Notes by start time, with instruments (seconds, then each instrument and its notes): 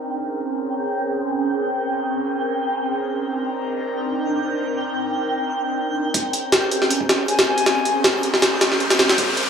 Already playing: analog synth pad A#4, synth texture G5
0.07 analog synth pad C4 C#4 G#4
3.11 analog synth pad D4 D#4 A#4
6.14 analog synth pad C4 C#4 G#4 A#4, synth texture G6, kick, closed hi-hat, riser
6.33 closed hi-hat
6.52 snare, closed hi-hat
6.71 closed hi-hat
6.82 snare
6.90 closed hi-hat
7.01 kick
7.09 snare, closed hi-hat
7.28 flute G#5, closed hi-hat
7.39 snare, closed hi-hat
7.47 flute G#5
7.58 closed hi-hat
7.66 snare, closed hi-hat
7.85 closed hi-hat
8.04 snare, closed hi-hat
8.23 closed hi-hat
8.34 snare
8.42 snare, closed hi-hat
8.61 snare, closed hi-hat
8.72 snare
8.80 closed hi-hat
8.90 snare, closed hi-hat
8.99 snare, closed hi-hat
9.09 snare, closed hi-hat
9.18 kick, closed hi-hat
9.37 closed hi-hat